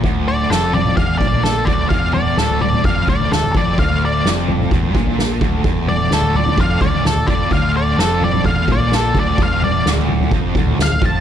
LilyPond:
<<
  \new Staff \with { instrumentName = "Lead electric guitar" } { \time 4/4 \key d \minor \tempo 4 = 128 r8 d''8 a'8 d''8 f''8 d''8 a'8 d''8 | f''8 d''8 a'8 d''8 f''8 d''8 a'8 d''8 | f''8 d''8 r2. | r8 d''8 a'8 d''8 f''8 d''8 a'8 d''8 |
f''8 d''8 a'8 d''8 f''8 d''8 a'8 d''8 | f''8 d''8 r2 f''8 a''8 | }
  \new Staff \with { instrumentName = "String section" } { \time 4/4 \key d \minor <d a f' a'>1~ | <d a f' a'>1~ | <d a f' a'>1~ | <d a f' a'>1~ |
<d a f' a'>1~ | <d a f' a'>1 | }
  \new Staff \with { instrumentName = "Overdriven electric guitar" } { \clef bass \time 4/4 \key d \minor d,4 f,4 e,8 bes,4 d,8 | e,4 d,4 f,8 d,8 d,8 f,8 | d,4 f,4 e,8 bes,4 d,8 | e,4 d,4 f,8 d,8 d,8 f,8 |
d,4 f,4 e,8 bes,4 d,8 | e,4 d,4 f,8 d,8 d,8 f,8 | }
  \new Staff \with { instrumentName = "Fingered electric bass" } { \clef bass \time 4/4 \key d \minor d,,4 f,,4 e,,8 bes,,4 d,,8 | e,,4 d,,4 f,,8 d,,8 d,,8 f,,8 | d,,4 f,,4 e,,8 bes,,4 d,,8 | e,,4 d,,4 f,,8 d,,8 d,,8 f,,8 |
d,,4 f,,4 e,,8 bes,,4 d,,8 | e,,4 d,,4 f,,8 d,,8 d,,8 f,,8 | }
  \new DrumStaff \with { instrumentName = "Drums" } \drummode { \time 4/4 <bd tomfh>4 sn8 <tomfh toml>16 <tomfh toml>16 <bd tomfh>8 <bd toml>16 tomfh16 sn8 <bd tomfh>8 | <bd tomfh>8 <tomfh toml>8 sn16 tomfh16 <tomfh toml>16 <tomfh toml>16 <bd tomfh>8 <bd toml>16 tomfh16 sn16 tomfh16 <bd tomfh>8 | <bd tomfh>4 sn8 <tomfh toml>16 <tomfh toml>16 <bd tomfh>8 <bd toml>16 tomfh16 sn8 <bd tomfh>8 | <bd tomfh>8 <tomfh toml>8 sn16 tomfh16 <tomfh toml>16 <tomfh toml>16 <bd tomfh>8 <bd toml>16 tomfh16 sn16 tomfh16 <bd tomfh>8 |
<bd tomfh>4 sn8 <tomfh toml>16 <tomfh toml>16 <bd tomfh>8 <bd toml>16 tomfh16 sn8 <bd tomfh>8 | <bd tomfh>8 <tomfh toml>8 sn16 tomfh16 <tomfh toml>16 <tomfh toml>16 <bd tomfh>8 <bd toml>16 tomfh16 sn16 tomfh16 <bd tomfh>8 | }
>>